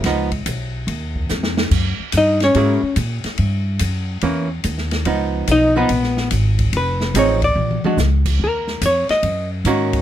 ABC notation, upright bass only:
X:1
M:4/4
L:1/8
Q:"Swing" 1/4=144
K:Dbmix
V:1 name="Upright bass" clef=bass
D,,2 C,,2 E,,2 F,,2 | G,, z =G,,2 A,, z B,, z | =G,,2 _G,,2 =E,,2 _E,,2 | D,,2 C,,2 B,,,2 A,,,2 |
F,,,2 =A,,,2 B,,, z ^C,,2 | E,,2 F,, z G,,2 A,,2 |]